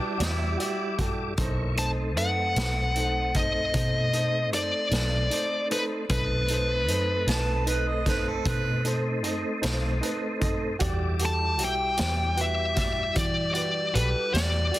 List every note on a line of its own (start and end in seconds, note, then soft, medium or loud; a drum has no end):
0.00 1.34 G3 medium
0.00 0.18 D4 medium
0.00 1.34 E4 medium
0.00 0.10 B4 medium
0.00 1.34 D5 medium
0.18 0.56 E2 medium
0.18 0.58 E4 medium
0.18 0.49 F#4 medium
0.18 0.49 G4 soft
0.18 0.49 D5 medium
0.18 snare medium
0.18 closed hi-hat medium
0.57 0.98 E4 medium
0.57 0.88 F#4 medium
0.57 0.89 G4 soft
0.57 0.89 D5 medium
0.57 closed hi-hat soft
0.98 1.28 F#4 medium
0.98 1.28 G4 soft
0.98 1.29 A4 medium
0.98 kick medium
0.98 closed hi-hat soft
1.37 2.18 B1 medium
1.37 1.77 A#3 soft
1.37 1.68 D#4 medium
1.37 1.77 E4 soft
1.37 1.68 A4 medium
1.37 1.69 C5 medium
1.37 1.77 C#5 soft
1.37 kick medium
1.37 closed hi-hat medium
1.75 6.05 A3 medium
1.75 6.05 C4 medium
1.75 6.05 D#4 medium
1.75 2.07 D#4 soft
1.75 2.08 A4 soft
1.75 1.89 A5 medium
1.75 closed hi-hat soft
1.80 2.08 C5 medium
2.16 2.53 F#2 medium
2.16 2.46 D#4 soft
2.16 2.46 A4 soft
2.16 2.47 B4 soft
2.16 3.39 F#5 medium
2.16 closed hi-hat soft
2.56 3.70 B1 medium
2.56 2.86 D#4 soft
2.56 2.86 A4 soft
2.56 2.87 B4 soft
2.56 snare medium
2.56 closed hi-hat medium
2.96 3.25 D#4 soft
2.96 3.26 A4 soft
2.96 3.26 C5 soft
2.96 closed hi-hat soft
3.34 3.65 D#4 soft
3.34 3.65 A4 soft
3.34 3.65 C5 soft
3.34 4.50 D#5 medium
3.34 kick medium
3.34 closed hi-hat medium
3.73 4.53 B2 medium
3.73 4.03 D#4 soft
3.73 4.04 A4 soft
3.73 4.04 C5 soft
3.73 kick medium
3.73 closed hi-hat medium
4.13 4.43 D#4 soft
4.13 4.43 A4 soft
4.13 4.44 C5 soft
4.13 closed hi-hat soft
4.53 4.71 F#2 medium
4.53 4.82 D#4 soft
4.53 4.83 A4 soft
4.53 4.83 C5 soft
4.53 5.67 D5 medium
4.53 closed hi-hat medium
4.91 5.28 B1 medium
4.91 5.21 D#4 soft
4.91 5.21 A4 soft
4.91 5.22 B4 soft
4.91 snare medium
4.91 closed hi-hat medium
5.30 5.60 D#4 soft
5.30 5.61 A4 soft
5.30 5.61 C5 medium
5.30 closed hi-hat medium
5.71 6.00 D#4 soft
5.71 6.00 A4 soft
5.71 5.83 B4 medium
5.71 6.01 C5 medium
5.71 closed hi-hat soft
6.09 6.89 B1 medium
6.09 10.76 A3 medium
6.09 10.77 C4 medium
6.09 10.77 D#4 medium
6.09 6.40 D#4 medium
6.09 6.40 A4 medium
6.09 7.63 B4 medium
6.09 6.41 B4 medium
6.09 kick medium
6.09 closed hi-hat medium
6.48 6.79 D#4 soft
6.48 6.79 A4 soft
6.48 6.80 C5 medium
6.48 closed hi-hat medium
6.88 7.25 F#2 medium
6.88 7.18 D#4 soft
6.88 7.18 A4 soft
6.88 7.19 C5 medium
6.88 closed hi-hat medium
7.27 8.41 B1 medium
7.27 7.57 D#4 medium
7.27 7.57 A4 medium
7.27 7.58 B4 medium
7.27 7.66 A5 medium
7.27 snare medium
7.27 closed hi-hat medium
7.66 7.96 D#4 medium
7.66 7.96 A4 medium
7.66 7.89 B4 medium
7.66 7.97 B4 medium
7.66 closed hi-hat soft
7.88 8.05 D#5 medium
8.06 8.36 D#4 medium
8.06 8.36 A4 soft
8.06 8.29 B4 medium
8.06 8.36 C5 medium
8.06 kick medium
8.06 snare soft
8.06 closed hi-hat soft
8.28 8.45 A4 medium
8.45 9.24 B2 medium
8.45 8.75 D#4 medium
8.45 8.75 A4 medium
8.45 8.84 B4 medium
8.45 8.76 C5 medium
8.45 kick medium
8.45 closed hi-hat medium
8.85 9.14 D#4 medium
8.85 9.15 A4 soft
8.85 9.15 C5 medium
8.85 closed hi-hat soft
9.23 9.42 F#2 medium
9.23 9.53 D#4 soft
9.23 9.53 A4 soft
9.23 9.54 D#5 medium
9.23 closed hi-hat soft
9.62 10.00 B1 medium
9.62 9.92 D#4 medium
9.62 9.92 A4 medium
9.62 9.92 C5 medium
9.62 snare medium
9.62 closed hi-hat medium
10.01 10.31 D#4 medium
10.01 10.32 A4 medium
10.01 10.32 B4 medium
10.01 closed hi-hat soft
10.40 10.70 D#4 medium
10.40 10.71 A4 medium
10.40 10.72 D#5 medium
10.40 kick medium
10.40 closed hi-hat soft
10.79 11.60 E2 medium
10.79 14.79 G3 medium
10.79 14.79 E4 medium
10.79 11.09 F#4 medium
10.79 11.10 G4 medium
10.79 14.79 D5 medium
10.79 11.11 D5 medium
10.79 kick medium
10.79 closed hi-hat medium
11.19 11.49 F#4 soft
11.19 11.50 G4 soft
11.19 11.50 A4 medium
11.19 closed hi-hat medium
11.25 11.63 A5 medium
11.58 11.96 B1 medium
11.58 11.88 F#4 soft
11.58 11.89 G4 soft
11.58 11.89 E5 medium
11.58 closed hi-hat medium
11.64 12.43 G5 medium
11.97 13.13 E2 medium
11.97 12.27 F#4 soft
11.97 12.28 G4 soft
11.97 12.28 D5 soft
11.97 snare medium
11.97 closed hi-hat medium
12.36 12.67 F#4 soft
12.36 12.67 G4 soft
12.36 12.67 B4 medium
12.36 closed hi-hat medium
12.41 12.78 E5 medium
12.75 13.06 F#4 soft
12.75 13.06 G4 soft
12.75 13.07 D5 medium
12.75 13.17 E5 medium
12.75 kick medium
12.75 snare soft
12.75 closed hi-hat medium
13.14 13.96 E3 medium
13.14 13.45 F#4 soft
13.14 13.45 G4 soft
13.14 13.46 D5 soft
13.14 13.53 D5 medium
13.14 kick medium
13.14 closed hi-hat medium
13.54 13.84 F#4 soft
13.54 13.84 G4 soft
13.54 13.85 B4 medium
13.54 13.95 D5 medium
13.54 closed hi-hat soft
13.93 14.13 B1 medium
13.93 14.23 F#4 soft
13.93 14.24 G4 soft
13.93 14.24 A4 soft
13.93 14.31 B4 medium
13.93 closed hi-hat medium
14.32 14.70 E2 medium
14.32 14.62 F#4 soft
14.32 14.63 G4 soft
14.32 14.79 D5 medium
14.32 14.64 D5 soft
14.32 closed hi-hat medium
14.36 snare medium
14.71 14.79 F#4 soft
14.71 14.79 G4 soft
14.71 14.79 D5 soft
14.71 closed hi-hat medium